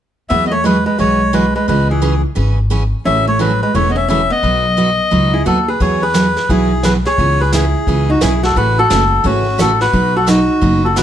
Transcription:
0.29 E2 E3 F#3 B3 F#4 G#4 E5
0.46 B3 D#5
0.51 A3 C#5
0.64 E3 F#3 G#3 B3 F#4 G#4 B4
0.86 G#3 B4
0.98 B1 E3 F#3 G#3 B3 F#4 G#4 C#5
1.33 E3 F#3 G#3 B3 F#4 G#4 B4
1.55 G#3 B4
1.68 C#2 C#3 E3 G#3 B3 C#4 G#4 B4
1.90 E3 G#4
2.02 C#3 E3 B3 C#4 G#4
2.35 G#1 C#3 E3 B3 C#4 G#4
2.70 C#3 E3 B3 C#4 G#4
3.05 A1 C#3 E3 A3 C#4 F#4 E5
3.27 A3 C#5
3.39 C#3 E3 F#3 A3 C#4 F#4 B4
3.62 G#3 B4
3.74 E1 C#3 E3 A3 C#4 F#4 C#5
3.89 B3 D#5
3.96 C#4 E5
4.08 C#3 E3 A3 C#4 F#4 E5
4.30 B3 D#5
4.43 B1 B2 F#3 B3 D#4 F#4
4.77 B2 F#3 B3 D#4 F#4
5.11 C#2 B2 F#3 B3 D#4 F#4
5.34 E4 G#4
5.46 D#2 B2 F#3 B3 D#4 F#4 A4
5.68 G#4 B4
5.80 E2 E3 F#3 B3 F#4 G#4 C#5, brush sweep, kick
6.02 G#4 B4
6.14 E3 F#3 B3 F#4 G#4, snare, hi-hat pedal
6.37 snare
6.49 B1 E3 F#3 B3 E4 F#4 G#4, brush sweep, kick
6.83 E3 F#3 B3 F#4 G#4 B4, snare, hi-hat pedal
7.05 G#4 C#5, snare
7.18 C#2 C#3 E3 B3 C#4 G#4, brush sweep, kick
7.40 G#4 B4
7.52 C#3 E3 B3 C#4 E4 G#4, snare, hi-hat pedal
7.87 C#2 C#3 E3 B3 C#4 G#4, brush sweep, kick
8.10 D#4 F#4
8.21 B1 C#3 E3 B3 C#4 E4 G#4, snare, hi-hat pedal
8.43 F#4 A4, snare
8.56 A1 C#3 E3 A3 C#4 F#4 B4, brush sweep, kick
8.79 F#4 A4
8.90 F#1 C#3 E3 A3 C#4 F#4, snare, hi-hat pedal
9.24 G#1 C#3 E3 A3 C#4 F#4, brush sweep, kick
9.58 A1 C#3 E3 A3 C#4 F#4 A4, snare, hi-hat pedal
9.81 F#4 B4, snare
9.93 B1 B2 F#3 B3 D#4 F#4, brush sweep, kick
10.16 F#4 A4
10.26 B2 F#3 B3 D#4 F#4, snare, hi-hat pedal
10.61 F#1 B2 F#3 B3 D#4 F#4, brush sweep, kick
10.85 F#4 A4
10.96 B2 F#3 B3 D#4 F#4 B4, snare, hi-hat pedal

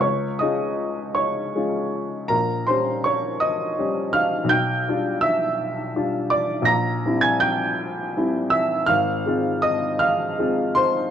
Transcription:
0.00 C#2 C#5 C#6
0.39 G#3 C#4 F4 D#5 D#6
1.15 C#5 C#6
1.55 G#3 C#4 F4
2.28 A#1 A#4 A#5
2.67 G3 C#4 G4 C5 C6
3.04 C#5 C#6
3.40 D#5 D#6
3.79 G3 C#4 G4
4.13 F5 F6
4.44 B1
4.49 G5 G6
4.88 G3 D4 F4
5.21 E5 E6
5.96 G3 D4 F4
6.30 D5 D6
6.62 A#1 A#6
6.66 A#5
7.05 G3 C4 E4
7.21 G#5 G#6
7.40 G5 G6
8.17 G3 C4 E4
8.50 E5 E6
8.86 G#1 F5 F6
9.26 G#3 C4 F4
9.62 D#5 D#6
9.99 F5 F6
10.39 G#3 C4 F4
10.75 C5 C6

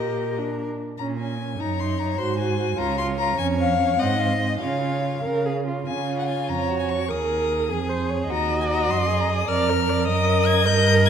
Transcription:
Already playing: A#2 G4 A#4 D#5
0.39 D4
0.98 A#2 C#4 A#5
1.20 C#4 G#5
1.40 C#4
1.60 F#2 D#4 C#5 A#5
1.80 D#4 C6
1.99 D#4 A#5
2.18 G#2 F#4 C5 C6
2.39 F#4 G#5
2.60 F#4
2.78 C#2 F4 C#5 A#5
2.98 F4 C6
3.18 F4 A#5
3.37 F2 C#4 C#5 G#5
3.58 C#4 F5
3.79 C#4
3.98 G#2 C4 D#5 F#5
4.19 C4 F5
4.40 C4 D#5
4.60 C#3 F4 C#5 F5
4.82 F4
5.03 F4
5.24 C#3 A#4
5.46 G#4
5.67 F4
5.85 C#3 F4 G#5
6.19 F#5
6.28 G#5
6.48 F2 C#5 A#5
6.69 F#4
6.79 G#5
6.89 C#6
7.09 D#2 G#4 A#4 D#6
7.70 F2 G#4
7.89 C5
8.09 C#5
8.29 D#2 F#4 D#5 A#5
8.60 G#5
8.69 A#5
8.89 F#2 C6
9.08 G#4
9.20 A#5
9.29 D#6
9.48 F2 A#4 D5 F6
9.69 A#4
9.89 D5
10.07 F#2 A#4 D#5 D#6
10.46 G#6
10.65 G2 A#4 D#5 G6
10.86 G6
11.06 G#6

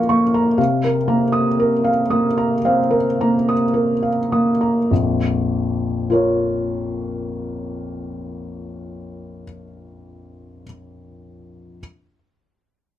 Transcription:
Already playing: F3 A#3 A#4 F5 A#5 C#6
0.09 A#3 C#6
0.34 A#5
0.58 C3 F5
0.84 A#4
1.08 A#3 A#5
1.32 D#6
1.60 A#4
1.84 F5
2.10 A#3 D#6
2.38 A#5
2.65 C4 F5
2.91 A#4
3.21 A#3 A#5
3.49 D#6
3.74 A#4
4.03 F5
4.32 A#3 D#6
4.61 A#5
4.91 A#1 F2
6.10 F4 A#4 C#5

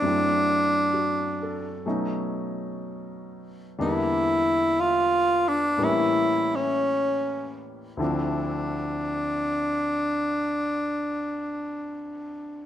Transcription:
Already playing: D4
0.02 F#2 F#3 A3
0.06 C4 E4
0.94 F#4
1.42 A4
1.86 B2 F#3 A3 C#4 D#4
3.79 E2 D3 G3 A#3 D4 E4
4.81 F4
5.48 D4
5.78 A2 E3 G3 A#3 C#4
5.84 E4
6.56 C#4
7.97 D2 D3 F3 C4 E4
8.04 D4

